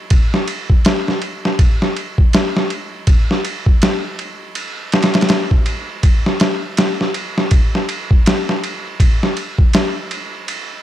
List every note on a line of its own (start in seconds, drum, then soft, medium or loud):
0.10 kick loud
0.10 ride medium
0.34 snare soft
0.48 ride medium
0.70 kick medium
0.85 snare loud
0.85 ride medium
1.08 snare soft
1.22 ride medium
1.45 snare soft
1.59 kick loud
1.59 ride medium
1.82 snare soft
1.97 ride medium
2.18 kick medium
2.33 snare loud
2.33 ride medium
2.57 snare soft
2.70 ride medium
3.07 kick loud
3.07 ride medium
3.31 snare soft
3.45 ride medium
3.66 kick medium
3.82 snare loud
3.82 ride medium
4.19 ride medium
4.55 ride medium
4.92 snare medium
4.92 ride medium
5.03 snare medium
5.03 ride medium
5.14 snare medium
5.14 ride medium
5.21 snare medium
5.21 ride medium
5.29 snare loud
5.29 ride medium
5.51 kick medium
5.66 ride medium
6.03 kick loud
6.03 ride medium
6.26 snare soft
6.40 snare loud
6.40 ride medium
6.77 snare loud
6.77 ride medium
7.01 snare soft
7.14 ride medium
7.38 snare soft
7.51 kick loud
7.51 ride medium
7.75 snare soft
7.89 ride medium
8.11 kick medium
8.26 snare loud
8.26 ride medium
8.49 snare soft
8.64 ride medium
9.00 kick loud
9.00 ride medium
9.23 snare soft
9.37 ride medium
9.59 kick medium
9.73 snare loud
9.73 ride medium
10.11 ride medium
10.48 ride medium